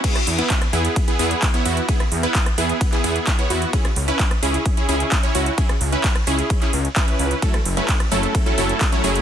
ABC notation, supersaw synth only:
X:1
M:4/4
L:1/16
Q:1/4=130
K:Emix
V:1 name="Supersaw synth"
[B,EG] z2 [B,EB]2 z [B,EG]3 [B,EG] [B,EG]3 [B,Ec] [B,EF]2 | [B,EG] z2 [B,EB]2 z [B,EG]3 [B,EG] [B,EG]3 [B,Ec] [B,EF]2 | [CG] z2 [CEB]2 z [CEG]3 [CEG] [CEG]3 [CEc] [CEF]2 | [CEG] z2 [CEB]2 z [CEG]3 [CEG] z2 [CEB]4 |
[F,A,CEA] z2 [F,A,CEB]2 z [F,A,CEA]3 [F,A,CEA] [F,A,CEA]3 [F,A,CEc] [F,A,CEG]2 |]